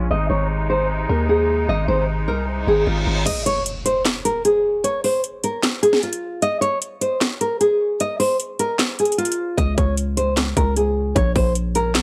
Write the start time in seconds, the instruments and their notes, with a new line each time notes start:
0.11 808-style bass G#1, accordion C3 G#3 D#4, nylon-string guitar D#5
0.30 808-style bass G#1, nylon-string guitar C#5
0.70 nylon-string guitar C5
1.09 808-style bass D#2, nylon-string guitar A#4
1.29 nylon-string guitar G#4
1.69 808-style bass G#1, nylon-string guitar D#5
1.88 808-style bass G#1, nylon-string guitar C5
2.28 808-style bass C2, nylon-string guitar A#4
2.48 reverse cymbal
2.67 808-style bass G#1, nylon-string guitar G#4
2.87 808-style bass G#1, nylon-string guitar F4
3.07 808-style bass G#1
3.26 nylon-string guitar D#5, closed hi-hat, crash, impact
3.46 nylon-string guitar C#5, closed hi-hat
3.66 closed hi-hat
3.86 nylon-string guitar C5, closed hi-hat
4.05 snare, clap, closed hi-hat
4.25 nylon-string guitar A#4, closed hi-hat
4.45 nylon-string guitar G#4, closed hi-hat
4.84 nylon-string guitar C#5, closed hi-hat
5.04 nylon-string guitar C5, open hi-hat
5.24 closed hi-hat
5.44 nylon-string guitar A#4, closed hi-hat
5.63 snare, clap, closed hi-hat
5.83 nylon-string guitar G#4, closed hi-hat
5.93 snare
6.03 nylon-string guitar F4, closed hi-hat
6.13 closed hi-hat
6.42 nylon-string guitar D#5, closed hi-hat
6.61 nylon-string guitar C#5, closed hi-hat
6.82 closed hi-hat
7.01 nylon-string guitar C5, closed hi-hat
7.21 snare, clap, closed hi-hat
7.41 nylon-string guitar A#4, closed hi-hat
7.61 nylon-string guitar G#4, closed hi-hat
8.00 nylon-string guitar D#5, closed hi-hat
8.20 nylon-string guitar C5, open hi-hat
8.40 closed hi-hat
8.59 nylon-string guitar A#4, closed hi-hat
8.79 snare, clap, closed hi-hat
8.99 nylon-string guitar G#4, closed hi-hat
9.05 closed hi-hat
9.12 closed hi-hat
9.18 nylon-string guitar F4, closed hi-hat
9.25 closed hi-hat
9.32 closed hi-hat
9.57 808-style bass C#2, nylon-string guitar D#5, kick, closed hi-hat
9.78 808-style bass C#2, nylon-string guitar C#5, kick, closed hi-hat
9.97 closed hi-hat
10.17 nylon-string guitar C5, closed hi-hat
10.37 snare, clap, closed hi-hat
10.57 808-style bass C#2, nylon-string guitar A#4, kick, closed hi-hat
10.76 nylon-string guitar G#4, closed hi-hat
11.16 808-style bass A#1, nylon-string guitar C#5, kick, closed hi-hat
11.36 808-style bass A#1, nylon-string guitar C5, kick, open hi-hat
11.55 closed hi-hat
11.75 nylon-string guitar A#4, closed hi-hat
11.95 snare, clap, closed hi-hat